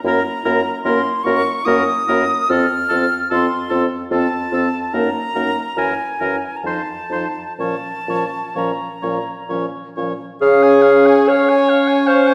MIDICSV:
0, 0, Header, 1, 6, 480
1, 0, Start_track
1, 0, Key_signature, -5, "minor"
1, 0, Tempo, 810811
1, 34, Time_signature, 3, 2, 24, 8
1, 2435, Tempo, 833333
1, 3395, Tempo, 873362
1, 3875, Tempo, 958466
1, 4835, Tempo, 923077
1, 5795, Tempo, 869565
1, 6275, Tempo, 788436
1, 6917, End_track
2, 0, Start_track
2, 0, Title_t, "Flute"
2, 0, Program_c, 0, 73
2, 26, Note_on_c, 0, 82, 90
2, 492, Note_off_c, 0, 82, 0
2, 500, Note_on_c, 0, 84, 84
2, 732, Note_on_c, 0, 85, 93
2, 741, Note_off_c, 0, 84, 0
2, 979, Note_on_c, 0, 87, 92
2, 988, Note_off_c, 0, 85, 0
2, 1479, Note_on_c, 0, 89, 109
2, 1488, Note_off_c, 0, 87, 0
2, 1960, Note_off_c, 0, 89, 0
2, 1965, Note_on_c, 0, 84, 86
2, 2271, Note_off_c, 0, 84, 0
2, 2452, Note_on_c, 0, 81, 89
2, 2910, Note_on_c, 0, 82, 100
2, 2919, Note_off_c, 0, 81, 0
2, 3397, Note_on_c, 0, 80, 83
2, 3405, Note_off_c, 0, 82, 0
2, 3827, Note_on_c, 0, 82, 51
2, 3835, Note_off_c, 0, 80, 0
2, 3868, Note_on_c, 0, 81, 72
2, 3876, Note_off_c, 0, 82, 0
2, 4334, Note_off_c, 0, 81, 0
2, 4337, Note_on_c, 0, 81, 85
2, 4843, Note_on_c, 0, 82, 63
2, 4850, Note_off_c, 0, 81, 0
2, 5323, Note_off_c, 0, 82, 0
2, 5789, Note_on_c, 0, 85, 82
2, 6917, Note_off_c, 0, 85, 0
2, 6917, End_track
3, 0, Start_track
3, 0, Title_t, "Oboe"
3, 0, Program_c, 1, 68
3, 42, Note_on_c, 1, 70, 62
3, 136, Note_off_c, 1, 70, 0
3, 266, Note_on_c, 1, 70, 60
3, 361, Note_off_c, 1, 70, 0
3, 506, Note_on_c, 1, 70, 57
3, 600, Note_off_c, 1, 70, 0
3, 747, Note_on_c, 1, 70, 57
3, 842, Note_off_c, 1, 70, 0
3, 990, Note_on_c, 1, 70, 60
3, 1085, Note_off_c, 1, 70, 0
3, 1233, Note_on_c, 1, 70, 58
3, 1328, Note_off_c, 1, 70, 0
3, 1482, Note_on_c, 1, 69, 63
3, 1577, Note_off_c, 1, 69, 0
3, 1711, Note_on_c, 1, 69, 57
3, 1806, Note_off_c, 1, 69, 0
3, 1954, Note_on_c, 1, 69, 61
3, 2049, Note_off_c, 1, 69, 0
3, 2186, Note_on_c, 1, 69, 58
3, 2281, Note_off_c, 1, 69, 0
3, 2437, Note_on_c, 1, 69, 63
3, 2529, Note_off_c, 1, 69, 0
3, 2675, Note_on_c, 1, 69, 59
3, 2767, Note_off_c, 1, 69, 0
3, 2908, Note_on_c, 1, 70, 57
3, 3000, Note_off_c, 1, 70, 0
3, 3150, Note_on_c, 1, 70, 55
3, 3242, Note_off_c, 1, 70, 0
3, 3391, Note_on_c, 1, 70, 58
3, 3479, Note_off_c, 1, 70, 0
3, 3628, Note_on_c, 1, 70, 53
3, 3716, Note_off_c, 1, 70, 0
3, 3880, Note_on_c, 1, 72, 53
3, 3960, Note_off_c, 1, 72, 0
3, 4110, Note_on_c, 1, 72, 49
3, 4190, Note_off_c, 1, 72, 0
3, 4350, Note_on_c, 1, 73, 52
3, 4430, Note_off_c, 1, 73, 0
3, 4597, Note_on_c, 1, 73, 47
3, 4677, Note_off_c, 1, 73, 0
3, 4826, Note_on_c, 1, 73, 49
3, 4909, Note_off_c, 1, 73, 0
3, 5071, Note_on_c, 1, 73, 46
3, 5155, Note_off_c, 1, 73, 0
3, 5315, Note_on_c, 1, 73, 45
3, 5398, Note_off_c, 1, 73, 0
3, 5561, Note_on_c, 1, 73, 46
3, 5644, Note_off_c, 1, 73, 0
3, 5795, Note_on_c, 1, 77, 75
3, 5912, Note_on_c, 1, 80, 73
3, 5920, Note_off_c, 1, 77, 0
3, 6019, Note_on_c, 1, 77, 79
3, 6027, Note_off_c, 1, 80, 0
3, 6151, Note_on_c, 1, 80, 69
3, 6160, Note_off_c, 1, 77, 0
3, 6278, Note_on_c, 1, 77, 79
3, 6288, Note_off_c, 1, 80, 0
3, 6399, Note_on_c, 1, 80, 75
3, 6409, Note_off_c, 1, 77, 0
3, 6522, Note_on_c, 1, 77, 73
3, 6532, Note_off_c, 1, 80, 0
3, 6636, Note_on_c, 1, 80, 74
3, 6645, Note_off_c, 1, 77, 0
3, 6753, Note_on_c, 1, 77, 76
3, 6762, Note_off_c, 1, 80, 0
3, 6877, Note_on_c, 1, 80, 76
3, 6886, Note_off_c, 1, 77, 0
3, 6917, Note_off_c, 1, 80, 0
3, 6917, End_track
4, 0, Start_track
4, 0, Title_t, "Clarinet"
4, 0, Program_c, 2, 71
4, 25, Note_on_c, 2, 64, 60
4, 120, Note_off_c, 2, 64, 0
4, 261, Note_on_c, 2, 64, 56
4, 356, Note_off_c, 2, 64, 0
4, 506, Note_on_c, 2, 64, 62
4, 600, Note_off_c, 2, 64, 0
4, 739, Note_on_c, 2, 64, 52
4, 834, Note_off_c, 2, 64, 0
4, 976, Note_on_c, 2, 64, 60
4, 1070, Note_off_c, 2, 64, 0
4, 1230, Note_on_c, 2, 64, 63
4, 1325, Note_off_c, 2, 64, 0
4, 1476, Note_on_c, 2, 65, 61
4, 1571, Note_off_c, 2, 65, 0
4, 1721, Note_on_c, 2, 65, 55
4, 1815, Note_off_c, 2, 65, 0
4, 1960, Note_on_c, 2, 65, 64
4, 2055, Note_off_c, 2, 65, 0
4, 2186, Note_on_c, 2, 65, 55
4, 2281, Note_off_c, 2, 65, 0
4, 2424, Note_on_c, 2, 65, 63
4, 2516, Note_off_c, 2, 65, 0
4, 2661, Note_on_c, 2, 65, 56
4, 2753, Note_off_c, 2, 65, 0
4, 2904, Note_on_c, 2, 63, 62
4, 2996, Note_off_c, 2, 63, 0
4, 3143, Note_on_c, 2, 63, 54
4, 3235, Note_off_c, 2, 63, 0
4, 3386, Note_on_c, 2, 64, 61
4, 3474, Note_off_c, 2, 64, 0
4, 3623, Note_on_c, 2, 64, 46
4, 3711, Note_off_c, 2, 64, 0
4, 3868, Note_on_c, 2, 63, 55
4, 3949, Note_off_c, 2, 63, 0
4, 4097, Note_on_c, 2, 63, 50
4, 4177, Note_off_c, 2, 63, 0
4, 4344, Note_on_c, 2, 61, 51
4, 4424, Note_off_c, 2, 61, 0
4, 4590, Note_on_c, 2, 61, 43
4, 4670, Note_off_c, 2, 61, 0
4, 4830, Note_on_c, 2, 61, 50
4, 4913, Note_off_c, 2, 61, 0
4, 5068, Note_on_c, 2, 61, 45
4, 5152, Note_off_c, 2, 61, 0
4, 5317, Note_on_c, 2, 61, 50
4, 5400, Note_off_c, 2, 61, 0
4, 5557, Note_on_c, 2, 61, 47
4, 5640, Note_off_c, 2, 61, 0
4, 5793, Note_on_c, 2, 68, 111
4, 6273, Note_on_c, 2, 73, 117
4, 6281, Note_off_c, 2, 68, 0
4, 6755, Note_on_c, 2, 72, 111
4, 6764, Note_off_c, 2, 73, 0
4, 6917, Note_off_c, 2, 72, 0
4, 6917, End_track
5, 0, Start_track
5, 0, Title_t, "French horn"
5, 0, Program_c, 3, 60
5, 25, Note_on_c, 3, 58, 60
5, 120, Note_off_c, 3, 58, 0
5, 268, Note_on_c, 3, 58, 54
5, 363, Note_off_c, 3, 58, 0
5, 506, Note_on_c, 3, 58, 63
5, 601, Note_off_c, 3, 58, 0
5, 735, Note_on_c, 3, 58, 53
5, 830, Note_off_c, 3, 58, 0
5, 983, Note_on_c, 3, 58, 65
5, 1078, Note_off_c, 3, 58, 0
5, 1232, Note_on_c, 3, 58, 51
5, 1326, Note_off_c, 3, 58, 0
5, 1477, Note_on_c, 3, 60, 65
5, 1571, Note_off_c, 3, 60, 0
5, 1722, Note_on_c, 3, 60, 56
5, 1816, Note_off_c, 3, 60, 0
5, 1961, Note_on_c, 3, 60, 64
5, 2056, Note_off_c, 3, 60, 0
5, 2194, Note_on_c, 3, 60, 57
5, 2288, Note_off_c, 3, 60, 0
5, 2434, Note_on_c, 3, 60, 63
5, 2526, Note_off_c, 3, 60, 0
5, 2676, Note_on_c, 3, 60, 56
5, 2768, Note_off_c, 3, 60, 0
5, 2907, Note_on_c, 3, 58, 65
5, 3000, Note_off_c, 3, 58, 0
5, 3148, Note_on_c, 3, 58, 54
5, 3240, Note_off_c, 3, 58, 0
5, 3391, Note_on_c, 3, 52, 56
5, 3479, Note_off_c, 3, 52, 0
5, 3630, Note_on_c, 3, 52, 51
5, 3718, Note_off_c, 3, 52, 0
5, 3863, Note_on_c, 3, 53, 51
5, 3945, Note_off_c, 3, 53, 0
5, 4106, Note_on_c, 3, 53, 45
5, 4186, Note_off_c, 3, 53, 0
5, 4342, Note_on_c, 3, 53, 53
5, 4422, Note_off_c, 3, 53, 0
5, 4595, Note_on_c, 3, 53, 44
5, 4676, Note_off_c, 3, 53, 0
5, 4828, Note_on_c, 3, 53, 50
5, 4911, Note_off_c, 3, 53, 0
5, 5073, Note_on_c, 3, 53, 44
5, 5156, Note_off_c, 3, 53, 0
5, 5319, Note_on_c, 3, 53, 51
5, 5402, Note_off_c, 3, 53, 0
5, 5566, Note_on_c, 3, 53, 44
5, 5649, Note_off_c, 3, 53, 0
5, 5800, Note_on_c, 3, 61, 78
5, 6917, Note_off_c, 3, 61, 0
5, 6917, End_track
6, 0, Start_track
6, 0, Title_t, "Bassoon"
6, 0, Program_c, 4, 70
6, 25, Note_on_c, 4, 42, 69
6, 120, Note_off_c, 4, 42, 0
6, 268, Note_on_c, 4, 42, 66
6, 363, Note_off_c, 4, 42, 0
6, 503, Note_on_c, 4, 42, 64
6, 597, Note_off_c, 4, 42, 0
6, 747, Note_on_c, 4, 42, 68
6, 841, Note_off_c, 4, 42, 0
6, 991, Note_on_c, 4, 42, 65
6, 1086, Note_off_c, 4, 42, 0
6, 1237, Note_on_c, 4, 42, 61
6, 1332, Note_off_c, 4, 42, 0
6, 1479, Note_on_c, 4, 41, 75
6, 1574, Note_off_c, 4, 41, 0
6, 1719, Note_on_c, 4, 41, 69
6, 1813, Note_off_c, 4, 41, 0
6, 1961, Note_on_c, 4, 41, 72
6, 2055, Note_off_c, 4, 41, 0
6, 2194, Note_on_c, 4, 41, 69
6, 2288, Note_off_c, 4, 41, 0
6, 2430, Note_on_c, 4, 41, 68
6, 2523, Note_off_c, 4, 41, 0
6, 2667, Note_on_c, 4, 41, 62
6, 2759, Note_off_c, 4, 41, 0
6, 2910, Note_on_c, 4, 42, 70
6, 3002, Note_off_c, 4, 42, 0
6, 3151, Note_on_c, 4, 42, 63
6, 3243, Note_off_c, 4, 42, 0
6, 3387, Note_on_c, 4, 42, 62
6, 3475, Note_off_c, 4, 42, 0
6, 3630, Note_on_c, 4, 42, 61
6, 3718, Note_off_c, 4, 42, 0
6, 3864, Note_on_c, 4, 41, 60
6, 3945, Note_off_c, 4, 41, 0
6, 4096, Note_on_c, 4, 41, 54
6, 4176, Note_off_c, 4, 41, 0
6, 4342, Note_on_c, 4, 46, 59
6, 4423, Note_off_c, 4, 46, 0
6, 4589, Note_on_c, 4, 46, 52
6, 4669, Note_off_c, 4, 46, 0
6, 4831, Note_on_c, 4, 46, 55
6, 4914, Note_off_c, 4, 46, 0
6, 5076, Note_on_c, 4, 46, 56
6, 5159, Note_off_c, 4, 46, 0
6, 5314, Note_on_c, 4, 46, 52
6, 5397, Note_off_c, 4, 46, 0
6, 5561, Note_on_c, 4, 46, 50
6, 5644, Note_off_c, 4, 46, 0
6, 5796, Note_on_c, 4, 49, 97
6, 6198, Note_off_c, 4, 49, 0
6, 6917, End_track
0, 0, End_of_file